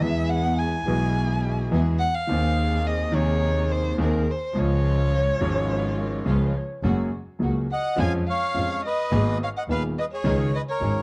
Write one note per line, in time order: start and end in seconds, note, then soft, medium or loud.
0.00 0.82 E2 medium
0.00 0.82 E2 loud
0.00 0.82 E3 medium
0.00 0.82 G#3 medium
0.00 0.82 B3 medium
0.00 0.83 B3 medium
0.00 0.82 E4 medium
0.00 0.82 G#4 medium
0.00 0.83 G#4 medium
0.00 0.31 E5 medium
0.30 0.60 F#5 loud
0.58 1.72 G#5 medium
0.86 1.68 B1 medium
0.86 1.68 B2 medium
0.86 1.67 E3 medium
0.86 1.68 G#3 medium
0.86 1.68 B3 medium
0.86 1.68 E4 medium
0.86 1.68 G#4 medium
0.86 1.69 G#4 medium
1.71 1.96 E2 medium
1.71 1.96 E3 medium
1.71 1.96 G#3 medium
1.71 1.96 B3 medium
1.71 1.96 E4 medium
1.71 1.96 G#4 medium
1.71 1.97 G#4 medium
2.00 2.16 F#5 loud
2.15 2.88 F5 loud
2.27 3.10 D#2 medium
2.27 3.10 D#2 loud
2.27 2.29 D#3 medium
2.27 3.10 D#3 medium
2.27 3.09 A#3 medium
2.27 3.10 A#3 medium
2.27 3.09 C4 medium
2.27 3.10 C4 medium
2.27 3.09 G#4 medium
2.27 3.11 G#4 medium
2.87 3.17 D#5 medium
3.12 3.94 D#2 medium
3.12 3.95 D#2 medium
3.12 3.95 C3 medium
3.12 3.95 D#3 medium
3.12 3.94 A#3 medium
3.12 3.95 D#4 medium
3.12 3.94 G#4 medium
3.12 3.73 C#5 medium
3.16 3.96 G#4 medium
3.72 4.00 C5 medium
3.98 4.23 D#2 medium
3.98 4.23 D#2 loud
3.98 4.23 D#3 medium
3.98 4.22 A#3 medium
3.98 4.22 C4 medium
3.98 4.23 C4 medium
3.98 4.22 G#4 medium
3.98 4.23 G#4 medium
4.02 4.33 A#4 medium
4.31 4.60 C5 medium
4.53 5.37 C#2 medium
4.53 5.37 C#2 loud
4.53 5.37 C#3 medium
4.53 5.36 F3 medium
4.53 5.36 G#3 medium
4.53 5.37 C#4 medium
4.53 5.37 F4 medium
4.53 5.38 G#4 medium
4.59 6.57 C#5 loud
5.11 5.69 C#5 loud
5.39 6.23 G#1 medium
5.39 6.22 G#2 medium
5.39 6.21 F3 medium
5.39 6.22 G#3 medium
5.39 6.22 C#4 medium
5.39 6.23 C#4 medium
5.39 6.22 F4 medium
5.43 6.24 G#4 medium
5.68 5.97 B4 medium
5.97 6.24 A#4 medium
6.25 6.50 C#2 medium
6.25 6.51 C#2 medium
6.25 6.50 C#3 medium
6.25 6.50 F3 medium
6.25 6.50 G#3 medium
6.25 6.50 C#4 medium
6.25 6.51 C#4 medium
6.25 6.51 F4 medium
6.25 6.50 G#4 medium
6.25 6.58 B4 medium
6.57 6.85 C#5 medium
6.83 7.08 F#1 medium
6.83 7.08 F#2 medium
6.83 7.08 F#3 medium
6.83 7.08 G#3 medium
6.83 7.08 A#3 medium
6.83 7.09 A#3 medium
6.83 7.08 C#4 medium
6.83 7.08 F#4 medium
6.83 7.08 G#4 medium
7.39 7.64 C#2 medium
7.39 7.65 C#2 medium
7.39 7.64 C#3 medium
7.39 7.64 F#3 soft
7.39 7.66 G#3 medium
7.39 7.64 A#3 soft
7.39 7.66 A#3 medium
7.39 7.64 C#4 soft
7.39 7.66 F#4 medium
7.39 7.65 G#4 medium
7.72 7.98 D#5 medium
7.72 7.97 F#5 medium
7.72 8.01 F#5 medium
7.96 8.21 F2 medium
7.96 8.22 F2 loud
7.96 8.21 F3 medium
7.96 8.21 G#3 medium
7.96 8.22 G#3 medium
7.96 8.21 C#4 medium
7.96 8.22 C#4 medium
7.96 8.22 F4 medium
7.96 8.21 G#4 medium
7.96 8.12 G#5 medium
8.01 8.13 F5 medium
8.01 8.13 G#5 loud
8.28 8.81 C#5 medium
8.28 8.80 F5 medium
8.28 8.81 F5 loud
8.54 8.79 F2 medium
8.54 8.79 F3 medium
8.54 8.79 G#3 soft
8.54 8.79 G#3 medium
8.54 8.79 C#4 soft
8.54 8.79 C#4 medium
8.54 8.79 F4 medium
8.54 8.79 G#4 medium
8.85 9.38 B4 medium
8.85 9.37 D#5 medium
8.85 9.38 D#5 loud
9.11 9.36 G#1 medium
9.11 9.36 G#1 loud
9.11 9.36 G#2 medium
9.11 9.36 D#3 medium
9.11 9.35 A#3 medium
9.11 9.36 A#3 medium
9.11 9.35 B3 medium
9.11 9.35 G#4 medium
9.43 9.49 C#5 medium
9.43 9.49 F5 medium
9.43 9.50 F5 medium
9.57 9.63 D#5 medium
9.57 9.63 F#5 medium
9.57 9.64 F#5 medium
9.68 9.93 D#1 medium
9.68 9.92 D#2 medium
9.68 9.93 D#2 medium
9.68 9.92 D#3 medium
9.68 9.92 A#3 soft
9.68 9.93 A#3 medium
9.68 9.93 B3 soft
9.68 9.93 B3 medium
9.68 9.93 G#4 medium
9.68 9.83 B4 medium
9.68 9.83 F5 medium
9.98 10.06 B4 medium
9.98 10.04 D#5 medium
9.98 10.06 D#5 medium
10.12 10.52 G#4 medium
10.12 10.51 C#5 medium
10.12 10.56 C#5 medium
10.24 10.49 C#2 medium
10.24 10.49 C#2 loud
10.24 10.48 C#3 medium
10.24 10.48 D#3 medium
10.24 10.48 G#3 medium
10.24 10.49 C#4 medium
10.24 10.49 D#4 medium
10.24 10.49 G#4 medium
10.55 10.62 B4 medium
10.55 10.61 D#5 medium
10.55 10.62 D#5 medium
10.68 11.02 A#4 medium
10.68 11.02 C#5 medium
10.80 11.02 G#1 medium
10.80 11.02 G#2 medium
10.80 11.02 D#3 soft
10.80 11.02 G#3 medium
10.80 11.02 C#4 soft
10.80 11.02 C#4 medium
10.80 11.02 D#4 soft
10.80 11.02 G#4 medium